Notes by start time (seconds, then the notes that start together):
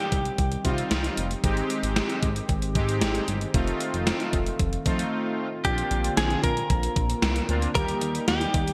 Already playing: D#3 G3 C4 D#4 G4
0.12 C2, kick, closed hi-hat
0.25 closed hi-hat
0.38 C2, kick, closed hi-hat
0.52 closed hi-hat
0.65 C3 G3 C4 D#4 F4, kick, closed hi-hat
0.72 F4
0.78 closed hi-hat
0.91 C2, snare, closed hi-hat
1.04 closed hi-hat
1.17 F1, closed hi-hat
1.31 closed hi-hat
1.44 G#1 D#3 G#3 C4 D#4 G4, kick, closed hi-hat
1.57 closed hi-hat
1.70 closed hi-hat
1.83 G#1, closed hi-hat
1.96 snare, closed hi-hat
2.09 closed hi-hat
2.23 G#1, kick, closed hi-hat
2.36 closed hi-hat
2.49 G#1, kick, closed hi-hat
2.62 closed hi-hat
2.75 G#2 G#3 C4 D#4 G4, kick, closed hi-hat
2.89 closed hi-hat
3.01 G#1, snare, closed hi-hat
3.15 closed hi-hat
3.28 G1, closed hi-hat
3.41 closed hi-hat
3.54 F1 A3 C4 D#4 F4, kick, closed hi-hat
3.67 closed hi-hat
3.80 closed hi-hat
3.94 F1, closed hi-hat
4.07 snare, closed hi-hat
4.20 closed hi-hat
4.33 F1, kick, closed hi-hat
4.46 closed hi-hat
4.59 F1, kick, closed hi-hat
4.73 closed hi-hat
4.86 F2 A3 C4 D#4 F4, kick, closed hi-hat
4.99 closed hi-hat
5.65 A#1 D3 A#3 C4 D4 F4 G4, kick, closed hi-hat
5.78 closed hi-hat
5.91 A#1, closed hi-hat
6.04 closed hi-hat
6.17 A#1 G#4, snare, closed hi-hat
6.30 closed hi-hat
6.44 A#1 A#4, kick, closed hi-hat
6.57 closed hi-hat
6.70 A#1, kick, closed hi-hat
6.83 closed hi-hat
6.96 A#1, kick, closed hi-hat
7.10 closed hi-hat
7.22 C2, snare, closed hi-hat
7.36 closed hi-hat
7.49 D2 A#3 C4 D4 F4, closed hi-hat
7.62 closed hi-hat
7.75 D#2 D#3 G3 A#3 D#4 G4 A#4, kick, closed hi-hat
7.88 closed hi-hat
8.01 D#2, closed hi-hat
8.15 closed hi-hat
8.28 D#2 G4, snare, closed hi-hat
8.41 closed hi-hat
8.54 D#2, kick, closed hi-hat
8.68 closed hi-hat